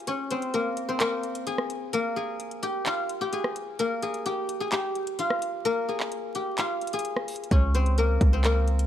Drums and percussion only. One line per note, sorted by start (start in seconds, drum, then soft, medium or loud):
0.07 closed hi-hat medium
0.30 closed hi-hat medium
0.42 closed hi-hat soft
0.54 closed hi-hat medium
0.77 closed hi-hat medium
1.00 clap loud
1.00 closed hi-hat medium
1.23 closed hi-hat soft
1.35 closed hi-hat medium
1.47 closed hi-hat medium
1.58 cross-stick medium
1.70 closed hi-hat medium
1.93 closed hi-hat medium
2.40 closed hi-hat medium
2.51 closed hi-hat soft
2.63 closed hi-hat medium
2.86 clap loud
2.86 closed hi-hat medium
3.09 closed hi-hat medium
3.33 closed hi-hat medium
3.44 cross-stick medium
3.56 closed hi-hat medium
3.79 closed hi-hat medium
4.02 closed hi-hat medium
4.14 closed hi-hat medium
4.26 closed hi-hat medium
4.49 closed hi-hat medium
4.72 clap loud
4.72 closed hi-hat medium
4.95 closed hi-hat medium
5.07 closed hi-hat medium
5.19 closed hi-hat medium
5.30 cross-stick medium
5.42 closed hi-hat medium
5.65 closed hi-hat medium
6.00 clap medium
6.12 closed hi-hat medium
6.35 closed hi-hat medium
6.58 clap loud
6.58 closed hi-hat medium
6.81 closed hi-hat soft
6.87 closed hi-hat medium
6.93 closed hi-hat medium
6.99 closed hi-hat medium
7.05 closed hi-hat medium
7.16 cross-stick medium
7.28 closed hi-hat medium
7.28 open hi-hat medium
7.36 closed hi-hat medium
7.44 closed hi-hat medium
7.51 kick loud
7.51 closed hi-hat medium
7.75 closed hi-hat medium
7.86 closed hi-hat medium
7.98 closed hi-hat medium
8.21 kick loud
8.21 closed hi-hat medium
8.44 clap loud
8.44 closed hi-hat medium
8.68 closed hi-hat soft
8.79 closed hi-hat medium